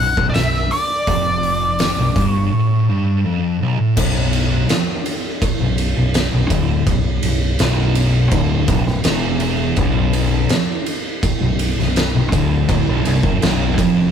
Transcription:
Already playing: B0 F#5
0.01 B1
0.17 B0 B1, kick
0.30 D5
0.34 B0 B1 E5, snare, open hi-hat
0.54 snare
0.71 D5, open hi-hat
1.07 F1 F2, kick, open hi-hat
1.43 open hi-hat
1.79 snare, open hi-hat
1.97 B0 B1
2.16 G1 G2, kick, open hi-hat
2.28 C#5
2.53 A2
2.89 G2
3.25 F2
3.60 B1
3.78 A2
3.96 B0 B1, kick, crash
4.33 ride
4.69 muted fingered electric bass stroke, muted distorted electric guitar stroke, snare, ride
5.06 ride
5.42 kick, ride
5.60 B0 B1
5.78 ride
5.96 B0 B1
6.14 snare, ride
6.33 B0 B1
6.50 D1 D2, kick, ride
6.86 B0 B1, kick, ride
7.23 B0 B1, ride
7.59 B0 B1, snare, ride
7.95 ride
8.31 D1 D2, kick, ride
8.68 B0 B1, kick, ride
8.86 B0 B1, snare
9.04 E1 E2, snare, ride
9.40 ride
9.76 B0 B1, kick, ride
10.13 ride
10.49 muted distorted electric guitar stroke, muted fingered electric bass stroke, snare, ride
10.86 ride
11.23 kick, ride
11.41 B0 B1
11.59 ride
11.78 B0 B1, snare
11.96 snare, ride
12.14 B0 B1
12.32 D1 D2, kick, ride
12.68 D1 D2, kick, ride
12.88 B0 B1
13.05 C1 C2, ride
13.23 F#1 F#2, kick
13.42 B0 B1, snare, ride
13.77 F1 F2, kick, ride

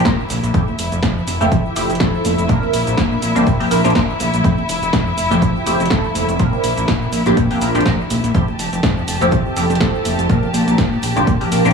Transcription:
Already playing: E4 E5
0.00 closed hi-hat
0.05 A#2 F3 C4 D4 A#4, kick, snare, shaker
0.20 shaker
0.29 A#1, open hi-hat, high conga, shaker
0.43 A#1, closed hi-hat, shaker
0.54 F2 F3 A3 C4 E4 G4 E5, kick, closed hi-hat, shaker
0.67 high conga, shaker
0.79 F1, open hi-hat, shaker
0.92 F1, closed hi-hat, shaker
1.03 F2, kick, snare, closed hi-hat, high conga, shaker
1.18 shaker
1.27 F1, open hi-hat, shaker
1.40 F1 F3 A3 C4 E4 G4, closed hi-hat, high conga, shaker
1.52 F2, kick, closed hi-hat, low conga, shaker
1.65 shaker
1.75 F1 F3 A3 C4 E4 G4, open hi-hat, high conga, shaker
1.89 F1, closed hi-hat, shaker
1.95 closed hi-hat
2.00 F2 F3 A3 C4 E4 A4, kick, snare, closed hi-hat, shaker
2.14 shaker
2.25 F1, open hi-hat, high conga, shaker
2.38 F1, closed hi-hat, shaker
2.48 A#2 F3 A#3 C4 D4 A#4, kick, closed hi-hat, shaker
2.62 high conga, shaker
2.73 A#1, open hi-hat, shaker
2.87 A#1, closed hi-hat, shaker
2.97 A#2, kick, snare, closed hi-hat, high conga, shaker
3.12 shaker
3.22 A#1, open hi-hat, shaker
3.35 A#1 F3 A#3 C4 D4 G4, closed hi-hat, high conga, low conga, shaker
3.47 A#2, kick, closed hi-hat, shaker
3.60 F3 A#3 C4 D4 G4, open hi-hat, shaker
3.71 A#1 F3 A#3 C4 D4 A#4, open hi-hat, high conga, shaker
3.84 A#1 F3 A#3 C4 D4 G4, snare, closed hi-hat, shaker
3.90 closed hi-hat
3.95 A#2 F3 A#3 C4 D4 A#4, kick, snare, closed hi-hat, shaker
4.10 shaker
4.20 A#1, open hi-hat, high conga, shaker
4.34 A#1, closed hi-hat, shaker
4.44 F2 F3 A3 C4 E4 G4, kick, closed hi-hat, shaker
4.58 high conga, shaker
4.69 F1, open hi-hat, shaker
4.82 F1, closed hi-hat, shaker
4.93 F2, kick, snare, closed hi-hat, high conga, shaker
5.07 shaker
5.17 F1, open hi-hat, shaker
5.30 F1 F3 A3 C4 E4 G4, closed hi-hat, high conga, shaker
5.42 F2, kick, closed hi-hat, low conga, shaker
5.56 shaker
5.66 F1 F3 A3 C4 E4 G4, open hi-hat, high conga, shaker
5.79 F1, closed hi-hat, shaker
5.86 closed hi-hat
5.90 F2 F3 A3 C4 E4 A4, kick, snare, shaker
6.04 shaker
6.15 F1, open hi-hat, high conga, shaker
6.28 F1, closed hi-hat, shaker
6.39 A#2 F3 A#3 C4 D4 A#4, kick, closed hi-hat, shaker
6.53 high conga, shaker
6.64 A#1, open hi-hat, shaker
6.77 A#1, closed hi-hat, shaker
6.88 A#2, kick, snare, closed hi-hat, high conga, shaker
7.02 shaker
7.12 A#1, open hi-hat, shaker
7.26 A#1 F3 A#3 C4 D4 G4, closed hi-hat, high conga, low conga, shaker
7.37 A#2, kick, closed hi-hat, shaker
7.50 F3 A#3 C4 D4 G4, open hi-hat, shaker
7.61 A#1 F3 A#3 C4 D4 A#4, open hi-hat, high conga, shaker
7.75 A#1 F3 A#3 C4 D4 G4, snare, closed hi-hat, shaker
7.81 closed hi-hat
7.86 A#2 F3 A#3 C4 D4 A#4, kick, snare, closed hi-hat, shaker
8.00 shaker
8.10 A#1, open hi-hat, high conga, shaker
8.24 A#1, closed hi-hat, shaker
8.34 F2 F3 A3 C4 E4 G4 A5, kick, closed hi-hat, shaker
8.48 high conga, shaker
8.59 F1, open hi-hat, shaker
8.72 F1, closed hi-hat, shaker
8.83 F2, kick, snare, closed hi-hat, high conga, shaker
8.97 shaker
9.07 F1, open hi-hat, shaker
9.21 F1 F3 A3 C4 E4 G4, closed hi-hat, high conga, shaker
9.31 F2, kick, closed hi-hat, low conga, shaker
9.45 shaker
9.56 F1 F3 A3 C4 E4 G4, open hi-hat, high conga, shaker
9.70 F1, closed hi-hat, shaker
9.75 closed hi-hat
9.80 F2 F3 A3 C4 E4 A4, kick, snare, shaker
9.95 shaker
10.05 F1, open hi-hat, high conga, shaker
10.19 F1, closed hi-hat, shaker
10.29 A#2 F3 A#3 C4 D4 A#4, kick, closed hi-hat, shaker
10.43 high conga, shaker
10.54 A#1, open hi-hat, shaker
10.67 A#1, closed hi-hat, shaker
10.78 A#2, kick, snare, closed hi-hat, high conga, shaker
10.92 shaker
11.02 A#1, open hi-hat, shaker
11.15 A#1 F3 A#3 C4 D4 G4, closed hi-hat, high conga, low conga, shaker
11.27 A#2, kick, closed hi-hat, shaker
11.40 F3 A#3 C4 D4 G4, open hi-hat, shaker
11.51 A#1 F3 A#3 C4 D4 A#4, open hi-hat, high conga, shaker
11.65 A#1 F3 A#3 C4 D4 G4, snare, closed hi-hat, shaker

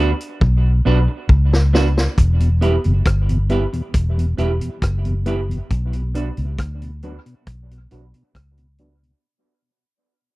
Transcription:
Already playing: D2 D4
0.00 F#4 B4
0.21 closed hi-hat
0.41 B1, kick
0.85 B1 B3 D4 F#4 B4
1.08 muted clean electric guitar stroke
1.29 C#2, kick
1.53 snare
1.73 B3 D4 F#4 B4, snare
1.97 snare
2.18 E1, kick, closed hi-hat
2.40 E2 B2, closed hi-hat
2.61 G3 B3 E4 G4 B4, closed hi-hat
2.84 F#1 E2 B2, closed hi-hat
3.06 G1, kick, cross-stick, closed hi-hat
3.29 E2 B2, closed hi-hat
3.50 G3 B3 E4 G4 B4, closed hi-hat
3.73 E2 B2, muted clean electric guitar stroke, closed hi-hat
3.94 E1, kick, closed hi-hat
4.17 E2 B2, closed hi-hat
4.37 E1 G3 B3 E4 G4 B4, closed hi-hat
4.61 E2 B2, closed hi-hat
4.82 F#1, kick, cross-stick, closed hi-hat
5.05 E2 B2, closed hi-hat
5.26 G3 B3 E4 G4 B4, closed hi-hat
5.49 E2 B2, closed hi-hat
5.71 B1, kick, closed hi-hat
5.93 B2, closed hi-hat
6.14 F#3 B3 D4 F#4 B4, closed hi-hat
6.37 C#2 B2, closed hi-hat
6.58 D2, kick, cross-stick, closed hi-hat
6.82 B2, closed hi-hat
7.03 F#3 B3 D4 F#4 B4, closed hi-hat
7.26 B2, closed hi-hat
7.47 B1, kick, closed hi-hat
7.71 B2, closed hi-hat
7.91 B1 F#3 B3 D4 F#4 B4, closed hi-hat
8.14 B2, muted clean electric guitar stroke, closed hi-hat
8.35 C#2, kick, cross-stick, closed hi-hat
8.58 B2, closed hi-hat
8.78 F#3 B3 D4 F#4 B4, closed hi-hat
9.03 B2, closed hi-hat

